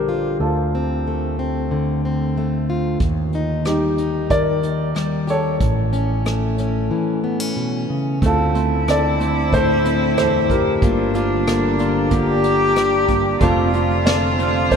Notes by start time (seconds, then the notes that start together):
Already playing: A#1 D3 G3 D4 G4 A#4
0.09 F4
0.40 D2 F4 A4
0.75 C4
1.07 A3
1.39 C4
1.71 D3
2.05 C4
2.38 A3
2.70 F4
3.00 D#2, kick, closed hi-hat
3.33 D#4, closed hi-hat
3.65 G3 D#4 G4, cross-stick, closed hi-hat
3.98 D#4, closed hi-hat
4.30 D#3 A#4 D5, kick, closed hi-hat
4.63 D#4, closed hi-hat
4.95 G3, cross-stick, closed hi-hat
5.27 G4 A4 C#5, closed hi-hat
5.60 A1 A2, kick, closed hi-hat
5.93 C#4, closed hi-hat
6.26 A3, cross-stick, closed hi-hat
6.58 C#4, closed hi-hat
6.91 E3
7.24 B3
7.40 C#4
7.56 B2
7.90 C#3
8.22 D2 A3 C4 E4 F4 A4 C5 D5 D6, kick, closed hi-hat
8.55 A3 C4, closed hi-hat
8.88 D3 C4 A4 D5, cross-stick, closed hi-hat
9.19 A3 C4, closed hi-hat
9.52 A2 A3 A4 C5, kick, closed hi-hat
9.85 C4, closed hi-hat
10.17 E2 A4 C5, cross-stick, closed hi-hat
10.50 F2 G4 A#4, kick, closed hi-hat
10.82 G1 G2 A#3 D4 F4 G4 A#5, kick, closed hi-hat
11.14 A#3 D4 F4, closed hi-hat
11.47 D3 A#3, cross-stick, closed hi-hat
11.79 A#3 D4 F4, closed hi-hat
12.11 D3 A#3 G4, kick, closed hi-hat
12.44 D4, closed hi-hat
12.76 cross-stick, closed hi-hat
13.08 G2 A#3, kick, closed hi-hat
13.40 F1 F2 A3 C4 F4 A4 C5 D6, kick, closed hi-hat
13.73 A3 C4 F4, closed hi-hat
14.06 D3 C4 A4 D5, snare, closed hi-hat
14.38 A3 C4 F4, closed hi-hat
14.71 F2 A3 A4 C5, kick, closed hi-hat